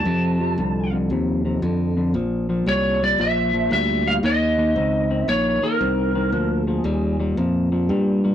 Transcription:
0.00 0.92 A5 loud
0.05 0.56 F2 medium
0.05 0.37 F2 medium
0.05 0.37 C3 medium
0.40 0.56 F2 medium
0.40 0.57 C3 medium
0.58 1.09 C2 medium
0.58 0.89 F2 medium
0.58 0.90 D3 medium
0.93 1.09 F2 medium
0.93 1.09 D3 medium
1.10 1.61 D#2 medium
1.10 1.42 F2 medium
1.10 1.42 C3 loud
1.45 1.61 F2 medium
1.45 1.61 C3 medium
1.62 2.13 F2 medium
1.62 1.94 F2 medium
1.62 1.94 D3 medium
1.97 2.13 F2 medium
1.97 2.13 D3 medium
2.14 2.65 A#1 medium
2.14 2.46 A#2 medium
2.14 2.46 F3 medium
2.49 2.65 A#2 medium
2.49 2.65 F3 medium
2.66 3.17 C2 medium
2.66 2.98 A#2 medium
2.66 2.98 G3 medium
2.66 3.03 C#5 loud
3.02 3.18 A#2 medium
3.02 3.18 G3 medium
3.02 3.19 D5 medium
3.18 3.70 A#1 medium
3.18 3.50 A#2 medium
3.18 3.51 F3 medium
3.18 3.69 E5 loud
3.53 3.70 A#2 medium
3.53 3.70 F3 medium
3.71 4.22 D2 medium
3.71 4.02 A#2 medium
3.71 4.03 G3 medium
3.71 4.08 E5 loud
4.06 4.22 A#2 medium
4.06 4.22 G3 medium
4.06 4.12 F5 loud
4.23 4.74 D#2 medium
4.23 4.55 D#3 medium
4.23 4.55 A#3 medium
4.23 5.28 D#5 loud
4.58 4.74 D#3 medium
4.58 4.74 A#3 medium
4.76 5.27 C#2 medium
4.76 5.07 D#3 medium
4.76 5.07 C4 medium
5.10 5.26 D#3 medium
5.10 5.27 C4 medium
5.28 5.60 A#1 medium
5.28 5.59 D#3 medium
5.28 5.59 A#3 medium
5.28 5.61 C#5 medium
5.62 5.79 D#3 medium
5.62 5.79 A#3 medium
5.62 6.64 A#4 medium
5.62 muted fingered electric bass stroke soft
5.80 6.31 C2 medium
5.80 6.11 D#3 medium
5.80 6.12 C4 medium
6.15 6.31 D#3 medium
6.15 6.31 C4 medium
6.32 6.83 D2 medium
6.32 6.64 A#2 medium
6.32 6.64 F3 medium
6.64 6.83 A#2 medium
6.64 6.83 F3 medium
6.64 7.16 G#4 medium
6.84 7.35 D#2 medium
6.84 7.16 A#2 medium
6.84 7.16 G3 medium
7.20 7.35 A#2 medium
7.20 7.36 G3 medium
7.37 7.88 F2 medium
7.37 7.69 A#2 medium
7.37 7.69 F3 medium
7.72 7.88 A#2 medium
7.72 7.88 F3 medium
7.89 8.35 G2 medium
7.89 8.21 A#2 medium
7.89 8.21 G3 medium
8.24 8.35 A#2 medium
8.24 8.35 G3 medium

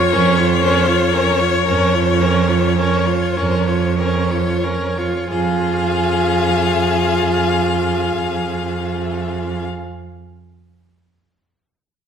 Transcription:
0.00 0.14 F4 medium
0.00 0.14 C#5 medium
0.00 4.60 C#5 loud
0.13 1.47 F2 loud
0.13 0.39 C#4 loud
0.13 0.37 A#4 medium
0.36 0.61 F4 medium
0.36 0.61 C#5 medium
0.61 0.88 C#4 loud
0.61 0.88 A#4 medium
0.86 1.15 F4 medium
0.86 1.14 C#5 medium
1.12 1.41 C#4 medium
1.12 1.40 A#4 medium
1.39 1.66 F4 medium
1.39 1.64 C#5 medium
1.64 3.16 F2 loud
1.64 1.95 C#4 medium
1.64 1.95 A#4 medium
1.93 2.22 F4 medium
1.93 2.22 C#5 medium
2.21 2.50 C#4 medium
2.21 2.51 A#4 medium
2.48 2.76 F4 medium
2.48 2.78 C#5 medium
2.76 3.07 C#4 medium
2.76 3.08 A#4 medium
3.06 3.38 F4 medium
3.06 3.38 C#5 medium
3.36 5.08 F2 loud
3.36 3.68 C#4 medium
3.36 3.69 A#4 medium
3.67 3.97 F4 medium
3.67 3.98 C#5 medium
3.98 4.32 C#4 medium
3.98 4.32 A#4 medium
4.30 4.65 F4 medium
4.30 4.66 C#5 medium
4.63 4.99 C#4 medium
4.63 5.00 A#4 medium
4.97 5.29 F4 medium
4.97 5.29 C#5 medium
5.29 9.63 F2 medium
5.29 9.63 F4 medium
5.29 9.63 G#4 loud
5.29 9.65 F5 loud

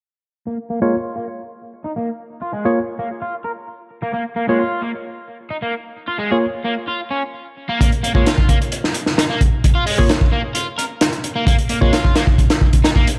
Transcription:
0.47 0.56 A#3 medium
0.70 0.79 A#3 medium
0.81 0.92 G#3 medium
0.81 0.95 A#3 medium
0.81 0.95 F4 medium
0.81 0.95 C#5 medium
0.93 1.15 F4 medium
1.16 1.24 A#3 medium
1.84 1.90 D#4 medium
1.96 2.07 A#3 medium
2.42 2.50 F4 medium
2.53 2.64 G#3 medium
2.65 2.78 A#3 medium
2.65 2.78 F4 medium
2.65 2.70 G#4 medium
2.65 2.78 C#5 medium
2.99 3.08 A#3 medium
3.22 3.33 F4 medium
3.45 3.50 A#4 medium
4.03 4.13 A#3 medium
4.14 4.22 A#3 medium
4.36 4.45 A#3 medium
4.48 4.58 G#3 medium
4.48 4.62 A#3 medium
4.48 4.62 F4 medium
4.48 4.62 C#5 medium
4.59 4.81 F4 medium
4.82 4.91 A#3 medium
5.51 5.56 D#4 medium
5.62 5.73 A#3 medium
6.08 6.16 F4 medium
6.19 6.30 G#3 medium
6.31 6.45 A#3 medium
6.31 6.45 F4 medium
6.31 6.36 G#4 medium
6.31 6.45 C#5 medium
6.65 6.74 A#3 medium
6.88 7.00 F4 medium
7.11 7.22 C#4 medium
7.69 7.79 A#3 medium
7.80 7.89 A#3 medium
7.80 kick loud
7.80 closed hi-hat medium
7.92 closed hi-hat soft
8.03 8.12 A#3 medium
8.03 closed hi-hat medium
8.14 8.25 G#3 medium
8.14 8.28 A#3 medium
8.14 8.28 F4 medium
8.14 8.28 C#5 medium
8.14 kick medium
8.26 8.48 F4 medium
8.26 snare loud
8.26 closed hi-hat medium
8.38 kick medium
8.49 8.57 A#3 medium
8.49 kick medium
8.49 closed hi-hat medium
8.62 closed hi-hat soft
8.72 closed hi-hat medium
8.84 snare soft
8.94 closed hi-hat medium
9.06 snare soft
9.18 9.23 D#4 medium
9.18 snare loud
9.18 closed hi-hat medium
9.29 9.40 A#3 medium
9.41 kick medium
9.41 closed hi-hat medium
9.64 kick loud
9.64 closed hi-hat medium
9.75 9.83 F4 medium
9.86 9.97 G#3 medium
9.86 open hi-hat medium
9.98 10.11 A#3 medium
9.98 10.11 F4 medium
9.98 10.03 G#4 medium
9.98 10.11 C#5 medium
9.98 kick medium
10.09 snare loud
10.09 closed hi-hat medium
10.21 kick medium
10.32 10.40 A#3 medium
10.55 10.66 F4 medium
10.55 closed hi-hat medium
10.78 10.83 A#4 medium
10.78 closed hi-hat medium
11.01 snare loud
11.01 closed hi-hat medium
11.13 closed hi-hat soft
11.24 closed hi-hat medium
11.36 11.45 A#3 medium
11.47 11.55 A#3 medium
11.47 kick loud
11.47 closed hi-hat medium
11.58 closed hi-hat soft
11.69 11.78 A#3 medium
11.69 closed hi-hat medium
11.81 11.91 G#3 medium
11.81 11.94 A#3 medium
11.81 11.94 F4 medium
11.81 11.94 C#5 medium
11.81 kick medium
11.92 12.14 F4 medium
11.92 snare loud
11.92 closed hi-hat medium
12.05 kick medium
12.15 12.24 A#3 medium
12.15 snare medium
12.15 closed hi-hat medium
12.27 kick medium
12.38 kick medium
12.38 closed hi-hat medium
12.50 snare medium
12.50 closed hi-hat medium
12.61 kick medium
12.73 kick medium
12.73 closed hi-hat medium
12.84 12.89 D#4 medium
12.84 snare loud
12.84 closed hi-hat medium
12.96 13.06 A#3 medium
12.96 kick medium
13.07 closed hi-hat medium

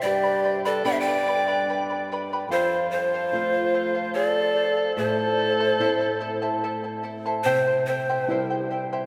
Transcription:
0.02 2.46 G2 medium
0.02 0.62 G4 medium
0.02 0.24 B4 medium
0.02 0.60 D5 loud
0.02 0.23 D5 medium
0.02 0.23 G5 medium
0.02 0.22 B5 medium
0.24 0.43 B4 soft
0.24 0.43 D5 soft
0.24 0.44 B5 medium
0.44 0.64 B4 medium
0.44 0.64 D5 medium
0.44 0.64 G5 medium
0.44 0.64 B5 medium
0.65 0.84 G4 medium
0.65 0.85 A4 medium
0.65 0.84 B4 medium
0.65 0.84 D5 medium
0.65 0.85 D5 medium
0.65 0.84 G5 medium
0.65 0.84 B5 medium
0.84 1.64 G3 medium
0.84 1.64 B3 soft
0.84 1.65 D4 medium
0.84 1.05 G4 medium
0.84 1.05 B4 medium
0.84 1.06 D5 medium
0.84 0.94 D5 medium
0.84 0.92 G5 loud
0.84 1.05 G5 medium
0.84 1.06 B5 medium
0.91 1.02 C5 medium
0.91 1.02 E5 medium
1.00 2.09 D5 medium
1.00 2.09 G5 loud
1.07 1.27 B4 soft
1.07 1.27 D5 medium
1.07 1.27 B5 medium
1.28 1.47 B4 medium
1.28 1.47 D5 medium
1.28 1.47 G5 medium
1.28 1.46 B5 medium
1.48 1.68 G4 medium
1.48 1.68 B4 medium
1.48 1.68 D5 medium
1.48 1.68 G5 medium
1.48 1.68 B5 medium
1.70 1.89 B4 medium
1.70 1.89 D5 medium
1.70 1.89 G5 medium
1.70 1.89 B5 medium
1.90 2.10 B4 soft
1.90 2.10 D5 soft
1.90 2.09 B5 medium
2.12 2.31 B4 medium
2.12 2.31 D5 medium
2.12 2.31 G5 medium
2.12 2.31 B5 medium
2.33 2.52 G4 medium
2.33 2.51 B4 medium
2.33 2.51 D5 medium
2.33 2.52 G5 medium
2.33 2.52 B5 medium
2.49 4.93 F2 medium
2.49 2.88 F4 medium
2.49 2.71 A4 medium
2.49 2.89 C5 loud
2.49 2.71 C5 loud
2.49 2.72 F5 medium
2.73 2.93 C5 soft
2.73 2.92 F5 medium
2.91 4.11 F4 medium
2.91 3.13 A4 medium
2.91 4.11 C5 loud
2.91 3.13 C5 medium
2.95 3.13 F5 medium
3.14 3.33 A4 medium
3.14 3.34 C5 medium
3.14 3.33 F5 medium
3.32 4.12 A3 soft
3.32 4.12 C4 soft
3.32 4.12 F4 medium
3.32 3.54 A4 medium
3.32 3.54 C5 medium
3.32 3.53 F5 medium
3.54 3.73 C5 soft
3.54 3.74 F5 medium
3.74 3.95 A4 medium
3.74 3.94 C5 medium
3.74 3.94 F5 medium
3.95 4.13 A4 medium
3.95 4.14 C5 medium
3.95 4.14 F5 medium
4.14 4.35 A4 medium
4.14 4.94 A4 medium
4.14 4.35 C5 medium
4.14 4.93 D5 loud
4.14 4.35 F5 medium
4.36 4.55 C5 soft
4.36 4.56 F5 soft
4.56 4.76 A4 medium
4.56 4.76 C5 medium
4.56 4.76 F5 medium
4.77 4.97 A4 soft
4.77 4.97 C5 medium
4.77 4.96 F5 medium
4.97 7.41 A2 medium
4.97 5.18 E4 medium
4.97 5.18 A4 medium
4.97 6.59 A4 loud
4.97 6.59 C5 loud
4.97 5.18 E5 medium
4.97 5.17 A5 medium
5.18 5.38 E4 soft
5.18 5.38 A4 soft
5.18 5.39 A5 medium
5.39 5.60 E4 medium
5.39 5.59 A4 medium
5.39 5.59 E5 medium
5.39 5.59 A5 medium
5.60 5.80 E4 medium
5.60 5.80 A4 medium
5.60 5.79 C5 medium
5.60 5.79 E5 medium
5.60 5.80 A5 medium
5.79 6.60 A3 medium
5.79 6.60 C4 soft
5.79 6.60 E4 medium
5.79 6.01 E4 medium
5.79 6.00 A4 medium
5.79 6.01 C5 medium
5.79 6.01 E5 medium
5.79 5.99 A5 medium
6.00 6.20 E4 medium
6.00 6.20 A4 medium
6.00 6.21 A5 medium
6.20 6.42 E4 medium
6.20 6.41 A4 medium
6.20 6.41 E5 medium
6.20 6.41 A5 medium
6.42 6.63 E4 medium
6.42 6.63 A4 medium
6.42 6.63 C5 medium
6.42 6.63 E5 medium
6.42 6.63 A5 medium
6.64 6.84 E4 medium
6.64 6.83 A4 medium
6.64 6.84 E5 medium
6.64 6.83 A5 medium
6.84 7.02 E4 soft
6.84 7.03 A4 soft
6.84 7.04 A5 medium
7.03 7.24 E4 medium
7.03 7.25 A4 medium
7.03 7.24 E5 medium
7.03 7.24 A5 medium
7.26 7.45 E4 medium
7.26 7.46 A4 medium
7.26 7.45 C5 medium
7.26 7.44 E5 medium
7.26 7.46 A5 medium
7.44 9.06 C3 medium
7.44 7.66 E4 medium
7.44 7.66 G4 medium
7.44 7.83 C5 loud
7.44 7.66 C5 medium
7.44 7.66 E5 medium
7.44 7.65 G5 medium
7.66 7.88 E4 soft
7.66 7.87 C5 soft
7.66 7.87 G5 medium
7.86 8.08 E4 medium
7.86 8.65 C5 loud
7.86 8.08 C5 medium
7.86 8.08 E5 medium
7.86 8.08 G5 medium
8.09 8.29 E4 medium
8.09 8.29 G4 medium
8.09 8.29 C5 medium
8.09 8.28 E5 medium
8.09 8.29 G5 medium
8.28 9.06 G3 soft
8.28 9.06 C4 soft
8.28 9.06 E4 medium
8.28 8.50 E4 medium
8.28 8.50 C5 medium
8.28 8.49 E5 medium
8.28 8.49 G5 medium
8.50 8.70 E4 soft
8.50 8.70 C5 medium
8.50 8.70 G5 medium
8.70 8.91 E4 medium
8.70 8.91 C5 medium
8.70 8.91 E5 medium
8.70 8.91 G5 medium
8.93 9.06 E4 medium
8.93 9.06 G4 medium
8.93 9.06 C5 medium
8.93 9.06 E5 medium
8.93 9.06 G5 medium

